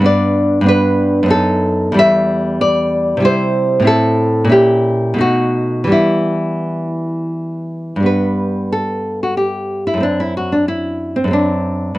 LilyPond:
\new Staff \with { instrumentName = "Nylon-string guitar" } { \time 3/4 \key e \minor \tempo 4 = 91 << { d''4 b'4 a'4 | e''4 d''4 c''4 | a'4 g'4 fis'4 | e'2 r4 |
\key g \major b'4 a'8. fis'16 g'8. e'16 | d'16 e'16 fis'16 d'16 e'8. c'16 d'4 | } \\ { <g, b d'>4 <g, b d'>4 <fis, b dis'>4 | <e, g e'>2 <c g e'>4 | <a, c' e'>4 <ais, cis' e'>4 <b, a dis'>4 | <e g b>2. |
<g, g b>2. | <fis, a c'>2 <fis, a c'>4 | } >> }